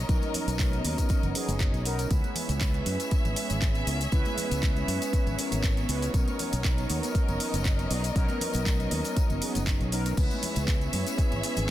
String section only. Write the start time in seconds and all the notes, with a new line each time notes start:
Already playing: B3 A#4 C#5 D#5
2.11 B3 G#4 C#5 E5
6.14 A#4 D#5
10.17 G#4 C#5 E5